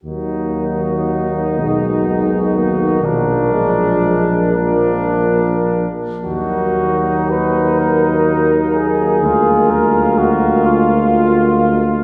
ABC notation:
X:1
M:6/8
L:1/8
Q:3/8=41
K:Ebm
V:1 name="Cornet"
G3 G3 | B3 B2 z | G2 c B2 A- | A B G F3 |]
V:2 name="Flugelhorn"
E6 | =D3 D2 z | E6 | F6 |]
V:3 name="Euphonium"
B,3 A, A, B, | B, A, A, B,2 z | B,6- | B,6 |]
V:4 name="Trombone" clef=bass
G,3 E,3 | F,3 F,2 z | G,6 | A,6 |]
V:5 name="Tuba" clef=bass
E,,3 C,,3 | B,,,4- B,,, z | E,,6 | =D,,6 |]